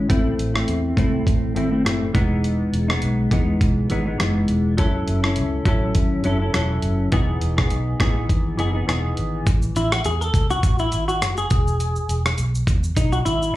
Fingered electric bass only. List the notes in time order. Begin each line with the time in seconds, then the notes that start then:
0.10 A1
0.38 A1
0.68 E2
0.97 C2
1.27 A1
1.56 G#1
1.85 F#1
2.15 E1
2.73 E1
3.03 B1
3.31 E2
3.61 B1
3.91 G#1
4.20 F#1
4.50 E1
4.78 F#1
5.08 F#1
5.37 C#2
5.65 A1
5.95 G#1
6.25 F#1
6.54 E1
6.83 F#1
7.12 E1
7.42 E1
7.72 B1
8.00 A1
8.29 G#1
8.59 F#1
8.88 E1
9.17 G#1
9.47 A1
9.76 A1
10.05 E2
10.34 C2
10.63 A1
10.93 G#1
11.22 F#1
11.51 E1
12.09 E1
12.38 B1
12.67 E2
12.97 B1
13.25 G#1